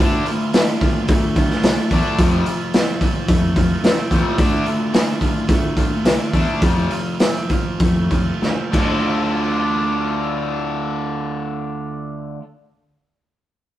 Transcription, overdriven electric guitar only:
0, 0, Header, 1, 2, 480
1, 0, Start_track
1, 0, Key_signature, -1, "minor"
1, 0, Tempo, 548948
1, 1907, Time_signature, 4, 2, 24, 8
1, 4309, Tempo, 569260
1, 6229, Tempo, 617284
1, 7669, Tempo, 647948
1, 11169, End_track
2, 0, Start_track
2, 0, Title_t, "Overdriven electric guitar"
2, 0, Program_c, 0, 29
2, 0, Note_on_c, 0, 50, 68
2, 229, Note_on_c, 0, 65, 71
2, 474, Note_on_c, 0, 62, 60
2, 704, Note_off_c, 0, 65, 0
2, 708, Note_on_c, 0, 65, 70
2, 948, Note_on_c, 0, 57, 68
2, 1185, Note_off_c, 0, 65, 0
2, 1186, Note_off_c, 0, 50, 0
2, 1189, Note_on_c, 0, 65, 71
2, 1414, Note_off_c, 0, 62, 0
2, 1424, Note_on_c, 0, 62, 64
2, 1672, Note_off_c, 0, 57, 0
2, 1676, Note_on_c, 0, 57, 64
2, 1905, Note_off_c, 0, 62, 0
2, 1917, Note_on_c, 0, 41, 67
2, 2151, Note_off_c, 0, 65, 0
2, 2155, Note_on_c, 0, 65, 72
2, 2399, Note_on_c, 0, 60, 66
2, 2632, Note_off_c, 0, 65, 0
2, 2636, Note_on_c, 0, 65, 67
2, 2875, Note_off_c, 0, 57, 0
2, 2878, Note_on_c, 0, 57, 67
2, 3106, Note_off_c, 0, 65, 0
2, 3110, Note_on_c, 0, 65, 66
2, 3112, Note_off_c, 0, 41, 0
2, 3348, Note_off_c, 0, 60, 0
2, 3359, Note_on_c, 0, 60, 63
2, 3590, Note_off_c, 0, 57, 0
2, 3593, Note_on_c, 0, 57, 57
2, 3831, Note_on_c, 0, 50, 67
2, 3833, Note_off_c, 0, 60, 0
2, 4058, Note_off_c, 0, 65, 0
2, 4061, Note_on_c, 0, 65, 71
2, 4306, Note_on_c, 0, 62, 64
2, 4539, Note_off_c, 0, 65, 0
2, 4543, Note_on_c, 0, 65, 65
2, 4775, Note_off_c, 0, 57, 0
2, 4778, Note_on_c, 0, 57, 64
2, 5015, Note_off_c, 0, 50, 0
2, 5017, Note_off_c, 0, 65, 0
2, 5020, Note_on_c, 0, 65, 68
2, 5243, Note_off_c, 0, 62, 0
2, 5253, Note_on_c, 0, 62, 64
2, 5489, Note_off_c, 0, 57, 0
2, 5492, Note_on_c, 0, 57, 57
2, 5735, Note_off_c, 0, 62, 0
2, 5741, Note_on_c, 0, 41, 66
2, 5976, Note_off_c, 0, 65, 0
2, 5979, Note_on_c, 0, 65, 66
2, 6234, Note_on_c, 0, 60, 60
2, 6455, Note_off_c, 0, 65, 0
2, 6464, Note_on_c, 0, 65, 66
2, 6695, Note_off_c, 0, 57, 0
2, 6698, Note_on_c, 0, 57, 63
2, 6928, Note_off_c, 0, 65, 0
2, 6934, Note_off_c, 0, 41, 0
2, 6937, Note_on_c, 0, 65, 64
2, 7170, Note_off_c, 0, 60, 0
2, 7179, Note_on_c, 0, 60, 60
2, 7411, Note_on_c, 0, 50, 64
2, 7415, Note_off_c, 0, 57, 0
2, 7421, Note_off_c, 0, 60, 0
2, 7421, Note_off_c, 0, 65, 0
2, 7424, Note_on_c, 0, 57, 85
2, 7432, Note_on_c, 0, 62, 79
2, 7443, Note_on_c, 0, 65, 77
2, 10142, Note_off_c, 0, 50, 0
2, 10154, Note_off_c, 0, 57, 0
2, 10162, Note_off_c, 0, 62, 0
2, 10171, Note_off_c, 0, 65, 0
2, 11169, End_track
0, 0, End_of_file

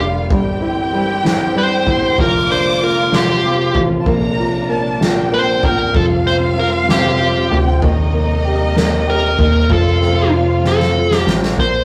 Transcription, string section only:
0, 0, Header, 1, 2, 480
1, 0, Start_track
1, 0, Tempo, 626305
1, 235, Time_signature, 6, 3, 24, 8
1, 9074, End_track
2, 0, Start_track
2, 0, Title_t, "String section"
2, 0, Program_c, 0, 48
2, 0, Note_on_c, 0, 50, 67
2, 0, Note_on_c, 0, 55, 61
2, 0, Note_on_c, 0, 58, 61
2, 0, Note_on_c, 0, 65, 84
2, 207, Note_off_c, 0, 58, 0
2, 220, Note_off_c, 0, 50, 0
2, 220, Note_off_c, 0, 55, 0
2, 220, Note_off_c, 0, 65, 0
2, 230, Note_on_c, 0, 52, 68
2, 231, Note_on_c, 0, 55, 62
2, 232, Note_on_c, 0, 60, 66
2, 232, Note_on_c, 0, 67, 86
2, 1658, Note_off_c, 0, 52, 0
2, 1659, Note_off_c, 0, 55, 0
2, 1659, Note_off_c, 0, 60, 0
2, 1659, Note_off_c, 0, 67, 0
2, 1670, Note_on_c, 0, 53, 63
2, 1672, Note_on_c, 0, 65, 82
2, 1674, Note_on_c, 0, 50, 66
2, 1674, Note_on_c, 0, 58, 67
2, 2387, Note_off_c, 0, 50, 0
2, 2387, Note_off_c, 0, 58, 0
2, 2391, Note_on_c, 0, 48, 72
2, 2391, Note_on_c, 0, 57, 58
2, 3099, Note_off_c, 0, 65, 0
2, 3106, Note_off_c, 0, 48, 0
2, 3106, Note_off_c, 0, 57, 0
2, 3115, Note_on_c, 0, 62, 75
2, 3116, Note_on_c, 0, 48, 72
2, 3120, Note_on_c, 0, 58, 57
2, 4524, Note_off_c, 0, 53, 0
2, 4541, Note_off_c, 0, 62, 0
2, 4544, Note_off_c, 0, 58, 0
2, 4559, Note_on_c, 0, 55, 64
2, 4562, Note_on_c, 0, 60, 64
2, 4562, Note_on_c, 0, 65, 76
2, 5983, Note_off_c, 0, 55, 0
2, 5984, Note_off_c, 0, 60, 0
2, 5985, Note_off_c, 0, 65, 0
2, 5997, Note_on_c, 0, 58, 66
2, 6000, Note_on_c, 0, 55, 60
2, 6000, Note_on_c, 0, 63, 75
2, 7406, Note_off_c, 0, 48, 0
2, 7423, Note_off_c, 0, 58, 0
2, 7424, Note_off_c, 0, 55, 0
2, 7424, Note_off_c, 0, 63, 0
2, 7431, Note_on_c, 0, 53, 68
2, 7434, Note_on_c, 0, 57, 67
2, 7436, Note_on_c, 0, 48, 76
2, 7438, Note_on_c, 0, 65, 80
2, 8861, Note_off_c, 0, 53, 0
2, 8862, Note_off_c, 0, 57, 0
2, 8863, Note_off_c, 0, 48, 0
2, 8864, Note_off_c, 0, 65, 0
2, 9074, End_track
0, 0, End_of_file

